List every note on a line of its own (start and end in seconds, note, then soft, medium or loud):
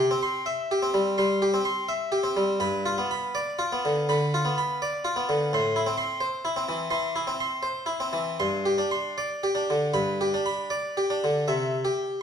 0.00 0.23 G4 medium
0.11 0.48 C4 medium
0.23 0.47 C6 medium
0.46 0.71 E5 medium
0.71 0.96 G4 medium
0.82 1.20 C4 medium
0.94 1.17 G3 medium
1.18 1.56 G3 medium
1.18 1.43 C6 medium
1.42 1.67 G4 medium
1.54 1.91 C4 medium
1.65 1.91 C6 medium
1.89 2.14 E5 medium
2.12 2.38 G4 medium
2.23 2.61 C4 medium
2.37 2.62 G3 medium
2.60 2.97 G2 medium
2.60 2.87 B5 medium
2.86 3.12 F4 medium
2.98 3.37 B3 medium
3.11 3.37 B5 medium
3.35 3.61 D5 medium
3.59 3.85 F4 medium
3.72 4.10 B3 medium
3.85 4.08 D3 medium
4.09 4.47 D3 medium
4.09 4.34 B5 medium
4.34 4.59 F4 medium
4.45 4.82 B3 medium
4.58 4.82 B5 medium
4.82 5.06 D5 medium
5.05 5.29 F4 medium
5.16 5.51 B3 medium
5.29 5.52 D3 medium
5.53 5.86 A2 medium
5.53 5.77 C6 medium
5.76 5.99 E4 medium
5.86 6.23 C4 medium
5.98 6.22 C6 medium
6.21 6.45 C5 medium
6.45 6.69 E4 medium
6.56 6.93 C4 medium
6.69 6.90 E3 medium
6.91 7.29 E3 medium
6.91 7.16 C6 medium
7.16 7.40 E4 medium
7.27 7.65 C4 medium
7.40 7.65 C6 medium
7.63 7.89 C5 medium
7.86 8.14 E4 medium
8.00 8.39 C4 medium
8.13 8.39 E3 soft
8.40 8.78 G2 medium
8.40 8.67 C6 medium
8.65 8.93 G4 medium
8.78 9.19 D4 soft
8.91 9.19 C6 medium
9.18 9.45 D5 soft
9.43 9.71 G4 medium
9.55 9.94 D4 soft
9.70 9.95 D3 soft
9.94 10.31 G2 medium
9.94 10.21 B5 medium
10.21 10.47 G4 medium
10.34 10.73 D4 soft
10.46 10.72 B5 medium
10.70 10.97 D5 medium
10.97 11.23 G4 soft
11.10 11.46 D4 soft
11.24 11.47 D3 medium
11.48 11.82 C3 soft
11.48 11.85 E5 soft
11.85 12.21 G4 soft